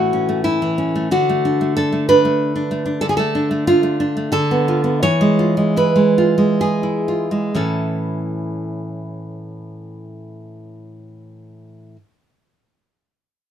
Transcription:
Already playing: A2 E3 A3 C#4 F#4
0.13 C#4
0.29 A3
0.44 E4
0.62 E3
0.78 C#4
0.95 A3
1.11 D3 F#4
1.29 A3
1.45 D4
1.61 A3
1.77 D4 A4
1.92 A3
2.09 D4 B4
2.25 A3
2.56 D4
2.71 A3
2.86 D4
3.01 D3 A4
3.09 G#4
3.17 A3 A4
3.35 D4
3.51 A3
3.67 D4 F4
3.83 A3
4.00 D4
4.17 A3
4.32 D3 A4
4.51 B3
4.68 F4
4.84 B3
5.03 E3 C#5
5.21 G#3
5.39 F4
5.57 G#3
5.77 E4 B4
5.96 G#3
6.18 F4
6.38 G#3
6.61 G#4
6.83 E4
7.08 F4
7.31 G#3
7.55 A2 E3 C#4 E4 A4

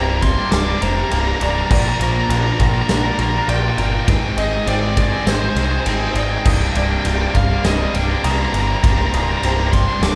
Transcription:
Already playing: C1 C2 G2 G3 A#3 C5
0.03 D4 A#5
0.08 C3 G3 A#3 A#5
0.17 A#5
0.21 C3 G3 A#3 D4 C6, muted distorted electric guitar stroke, kick, ride
0.36 C3 G3 A#3 D4
0.51 C1 G3 D6, snare, ride
0.66 C3 G3 A#3 D4
0.81 F1 C3 G3 A#3 D4 C5 A#5, ride
0.95 C3 G3 A#3 D4
1.10 C1 C2 G2 C3 G3 A#3 D4 A#5, ride
1.21 A#5
1.28 A#5
1.35 A#5
1.40 C1 C3 G3 A#3 D4 D5 A#5, ride
1.51 D4 A#5
1.56 C3 G3 A#3 A#5
1.69 A#1 A#2 F3 A#3 D4 F4 A#4 D5 A#5, kick, crash
1.79 A#5
1.88 A#5
1.96 A#1 A#3 A#5
2.00 D4 F4 A#4 C5, ride
2.04 A#5
2.12 F4 A#4 A#5
2.16 A#3 D4
2.21 A#5
2.29 A#1 A#2 F3 A#3 D4 F4 A#4 A#5, ride
2.38 A#5
2.44 A#3 D4 F4 A#4 A#5
2.53 A#5
2.59 A#1 A#3 D4 F4 A#4 A#5, muted distorted electric guitar stroke, kick, ride
2.67 A#5
2.74 A#3 D4 F4 A#4 A#5
2.82 A#5
2.89 A#1 D4 A#5, snare, ride
2.98 A#5
3.04 A#3 D4 F4 A#4 A#5
3.14 A#5
3.18 A#1 A#3 D4 F4 A#4 A#5, ride
3.29 A#4 A#5
3.34 A#3 D4 F4
3.38 A#5
3.48 A#1 A#2 F3 A#3 D4 F4 A#4 D5 G5, ride
3.56 G5
3.62 G5
3.70 G5
3.77 G1 A#3 D4 F4 A#4 G5, ride
3.86 G5
3.92 A#3 D4 F4 A#4 G5
4.00 G5
4.07 G#1 G#2 D#3 G#3 C4 D#4 G#4 G5, kick, ride
4.37 G#1 G#3 C4 D#4 G#4 D#5, ride
4.51 G#3 C4 D#4 G#4
4.66 G#1 G#2 D#3 G#3 C4 D#4 G#4 C5 D5, ride
4.82 G#3 C4 D#4 G#4
4.96 G#3 C4 D#4 G#4 D5, muted distorted electric guitar stroke, kick, ride
5.11 G#3 C4 D#4 G#4
5.26 G#1 C4 C5, snare, ride
5.35 C5
5.41 G#3 C4 D#4 G#4 C5
5.49 C5
5.55 C2 G#3 C4 D#4 G#4 C5, snare, ride
5.65 C5
5.71 G#3 C4 D#4 G#4 C5
5.80 C5
5.86 G#1 G#2 D#3 G#3 C4 D#4 G#4 C5 G5, ride
5.93 C5 G5
6.00 C5 G5
6.08 C5 G5
6.14 G#1 G#3 C4 D#4 D5 G5, ride
6.19 G#4
6.23 G5
6.30 G#3 C4 D#4 G#4 G5
6.38 G5
6.45 C1 C2 G2 C3 G3 A#3 D4 A#4 C5 G5 C6 D#6, kick, crash
6.54 G5
6.61 G5
6.68 G5
6.74 C1 C3 G3 A#3 D4 D5 G5, ride
6.84 G5
6.89 C3 G3 A#3 D4 G5
7.00 G5
7.04 C1 C2 G2 C3 G3 A#3 D4 G5, ride
7.16 D4 G5
7.20 C3 G3 A#3 G5
7.31 C3 G5
7.35 C1 G3 A#3 D4 F5, muted distorted electric guitar stroke, kick, ride
7.48 C3 G3 A#3 D4
7.64 C1 G3 D#5, snare, ride
7.78 C3 G3 A#3 D4
7.94 C1 C3 G3 A#3 D4 G5, ride
8.08 C3 G3 A#3 D4
8.23 C2 G2 C3 G3 A#3 D4 A#5 D#6, ride
8.31 A#5
8.39 A#5
8.46 A#5
8.53 G1 C3 G3 A#3 D4 A#5, ride
8.61 A#5
8.67 C3 G3 A#3 D4 A#5
8.76 A#5
8.83 C1 C2 G2 C3 G3 A#3 D4 A#5, kick, ride
8.92 A#5
8.98 A#5
9.07 A#5
9.12 C1 C3 G3 A#3 D4 A#5 D#6, ride
9.21 A#5
9.27 C3 G3 A#3 D4 A#5
9.38 A#5
9.42 C1 C2 G2 C3 G3 A#3 D4 C5 A#5, ride
9.53 D4 A#5
9.58 C3 G3 A#3 A#5
9.67 A#5
9.72 C3 G3 A#3 D4 C6, muted distorted electric guitar stroke, kick, ride
9.86 C3 G3 A#3 D4
10.01 C1 G3 D6, snare, ride

